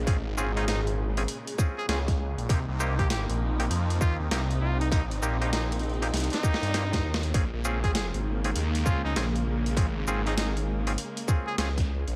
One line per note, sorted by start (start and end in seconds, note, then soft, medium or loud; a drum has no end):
0.00 0.18 A#1 medium
0.00 2.46 A#2 medium
0.00 2.45 C#3 medium
0.00 2.46 G#3 medium
0.07 0.17 C4 medium
0.07 0.17 C#4 medium
0.07 0.17 F4 medium
0.07 0.17 G#4 loud
0.07 kick loud
0.07 closed hi-hat medium
0.18 0.35 A1 medium
0.36 1.26 G#1 medium
0.36 0.52 C4 medium
0.36 0.52 C#4 medium
0.36 0.52 F4 medium
0.36 0.52 G#4 medium
0.36 shaker medium
0.56 1.13 C4 medium
0.56 1.13 C#4 medium
0.56 0.63 D#4 medium
0.56 1.13 F4 medium
0.56 1.13 G#4 medium
0.56 closed hi-hat soft
0.67 0.80 D#4 medium
0.67 snare loud
0.67 closed hi-hat medium
0.87 closed hi-hat soft
1.17 1.23 C4 medium
1.17 1.23 C#4 medium
1.17 1.23 F4 medium
1.17 1.23 G#4 medium
1.17 closed hi-hat soft
1.28 closed hi-hat medium
1.47 closed hi-hat medium
1.58 1.86 C4 medium
1.58 1.86 C#4 medium
1.58 1.86 F4 medium
1.58 1.86 G#4 medium
1.58 kick loud
1.58 snare soft
1.58 shaker medium
1.78 1.85 G#4 medium
1.88 2.35 C#2 loud
1.88 1.99 C4 medium
1.88 1.99 C#4 medium
1.88 1.99 F4 medium
1.88 1.99 G#4 medium
1.88 2.01 G#4 medium
1.88 snare loud
1.88 closed hi-hat medium
2.08 kick medium
2.08 snare soft
2.08 closed hi-hat soft
2.38 2.47 A#1 loud
2.38 closed hi-hat soft
2.49 2.65 C2 loud
2.49 7.31 C3 medium
2.49 4.90 A#3 medium
2.49 2.60 A#3 medium
2.49 2.60 C4 medium
2.49 2.59 D#4 medium
2.49 7.31 D#4 medium
2.49 2.59 G4 medium
2.49 kick loud
2.49 closed hi-hat medium
2.68 3.26 C2 medium
2.80 2.95 A#3 medium
2.80 2.95 C4 medium
2.80 2.95 D#4 medium
2.80 2.95 G4 loud
2.80 shaker medium
2.99 3.55 A#3 medium
2.99 3.55 C4 medium
2.99 3.55 D#4 medium
2.99 3.06 G4 medium
2.99 3.55 G4 medium
2.99 kick medium
2.99 closed hi-hat soft
3.10 3.22 G4 medium
3.10 snare loud
3.10 closed hi-hat medium
3.29 3.69 A#1 medium
3.29 closed hi-hat soft
3.60 3.65 A#3 medium
3.60 3.65 C4 medium
3.60 3.65 D#4 medium
3.60 3.65 G4 medium
3.60 closed hi-hat soft
3.70 3.99 F2 loud
3.70 closed hi-hat medium
3.90 closed hi-hat medium
4.01 4.17 D#2 loud
4.01 4.29 A#3 medium
4.01 4.29 C4 medium
4.01 4.29 D#4 medium
4.01 4.16 F4 medium
4.01 4.29 G4 medium
4.01 kick loud
4.01 shaker medium
4.20 4.29 D#2 loud
4.31 4.60 C2 loud
4.31 4.41 A#3 medium
4.31 4.41 C4 medium
4.31 4.41 D#4 medium
4.31 4.41 G4 medium
4.31 snare loud
4.31 closed hi-hat medium
4.51 closed hi-hat soft
4.61 5.20 C2 loud
4.61 4.77 F4 medium
4.80 4.88 D#4 medium
4.80 closed hi-hat soft
4.91 5.02 A#3 medium
4.91 7.32 C4 medium
4.91 5.02 C4 medium
4.91 5.04 D#4 medium
4.91 5.02 D#4 medium
4.91 5.02 G4 medium
4.91 kick loud
4.91 closed hi-hat medium
5.11 closed hi-hat soft
5.22 6.11 A#1 loud
5.22 5.37 A#3 medium
5.22 5.37 C4 medium
5.22 5.37 D#4 medium
5.22 5.37 G4 medium
5.22 shaker medium
5.41 5.97 A#3 medium
5.41 5.97 C4 medium
5.41 5.48 D#4 medium
5.41 5.97 D#4 medium
5.41 5.97 G4 medium
5.41 closed hi-hat soft
5.53 5.65 D#4 medium
5.53 snare loud
5.53 closed hi-hat medium
5.72 closed hi-hat soft
5.79 closed hi-hat soft
5.83 closed hi-hat soft
5.89 closed hi-hat soft
5.94 closed hi-hat soft
6.02 6.08 A#3 medium
6.02 6.08 C4 medium
6.02 6.08 D#4 medium
6.02 6.08 G4 medium
6.02 closed hi-hat medium
6.13 6.29 C2 loud
6.13 snare medium
6.13 closed hi-hat medium
6.17 closed hi-hat medium
6.20 closed hi-hat medium
6.24 closed hi-hat soft
6.30 7.15 D#4 medium
6.30 closed hi-hat soft
6.33 snare medium
6.33 closed hi-hat medium
6.43 6.71 A#3 medium
6.43 6.71 C4 medium
6.43 6.71 D#4 medium
6.43 6.71 G4 medium
6.43 kick loud
6.43 shaker medium
6.54 snare medium
6.62 7.02 G2 loud
6.62 closed hi-hat soft
6.74 6.84 A#3 medium
6.74 6.84 C4 medium
6.74 6.84 D#4 medium
6.74 6.84 G4 medium
6.74 snare medium
6.74 closed hi-hat medium
6.93 kick medium
6.93 snare medium
6.93 closed hi-hat soft
7.04 7.33 D#2 loud
7.14 snare loud
7.23 closed hi-hat soft
7.34 7.50 A#1 loud
7.34 12.16 C#3 medium
7.34 12.16 G#3 medium
7.34 12.15 A#3 medium
7.34 7.44 C4 medium
7.34 7.44 C#4 medium
7.34 7.44 F4 medium
7.34 7.44 G#4 loud
7.34 kick loud
7.34 closed hi-hat medium
7.53 8.11 A#1 loud
7.65 7.79 C4 medium
7.65 7.79 C#4 medium
7.65 7.79 F4 medium
7.65 7.79 G#4 loud
7.65 shaker medium
7.83 8.40 C4 medium
7.83 8.40 C#4 medium
7.83 8.40 F4 medium
7.83 7.91 G#4 medium
7.83 8.40 G#4 medium
7.83 kick medium
7.83 closed hi-hat soft
7.94 8.07 G#4 medium
7.94 snare loud
7.94 closed hi-hat medium
8.14 8.54 G#1 medium
8.14 closed hi-hat soft
8.44 8.50 C4 medium
8.44 8.50 C#4 medium
8.44 8.50 F4 medium
8.44 8.50 G#4 medium
8.44 closed hi-hat medium
8.56 8.84 D#2 loud
8.56 closed hi-hat medium
8.75 closed hi-hat medium
8.85 9.02 C#2 loud
8.85 9.14 C4 medium
8.85 9.14 C#4 medium
8.85 9.01 F4 medium
8.85 9.14 F4 medium
8.85 9.14 G#4 medium
8.85 kick loud
8.85 shaker medium
9.04 9.14 C#2 loud
9.04 9.18 D#4 medium
9.16 9.45 A#1 medium
9.16 9.26 C4 medium
9.16 9.26 C#4 medium
9.16 9.26 F4 medium
9.16 9.26 G#4 loud
9.16 snare loud
9.16 closed hi-hat medium
9.36 closed hi-hat soft
9.46 9.88 A#1 loud
9.66 closed hi-hat soft
9.77 9.87 C4 medium
9.77 9.87 C#4 medium
9.77 9.87 F4 medium
9.77 9.87 G#4 loud
9.77 kick loud
9.77 closed hi-hat medium
9.88 10.05 A1 loud
10.07 10.96 G#1 loud
10.07 10.22 C4 medium
10.07 10.22 C#4 medium
10.07 10.22 F4 medium
10.07 10.22 G#4 loud
10.07 shaker medium
10.26 10.83 C4 medium
10.26 10.83 C#4 medium
10.26 10.33 D#4 medium
10.26 10.83 F4 medium
10.26 10.83 G#4 medium
10.26 closed hi-hat soft
10.37 10.50 D#4 medium
10.37 snare loud
10.37 closed hi-hat medium
10.57 closed hi-hat soft
10.87 10.93 C4 medium
10.87 10.93 C#4 medium
10.87 10.93 F4 medium
10.87 10.93 G#4 medium
10.87 closed hi-hat medium
10.98 closed hi-hat medium
11.17 closed hi-hat medium
11.28 11.56 C4 medium
11.28 11.56 C#4 medium
11.28 11.56 F4 medium
11.28 11.56 G#4 medium
11.28 kick loud
11.28 snare soft
11.28 shaker medium
11.47 11.54 G#4 loud
11.58 12.05 C#2 medium
11.58 11.69 C4 medium
11.58 11.69 C#4 medium
11.58 11.68 F4 medium
11.58 11.71 G#4 medium
11.58 11.68 G#4 medium
11.58 snare loud
11.58 closed hi-hat medium
11.77 kick medium
11.77 snare soft
11.77 closed hi-hat soft
12.07 12.16 A#1 loud
12.07 closed hi-hat soft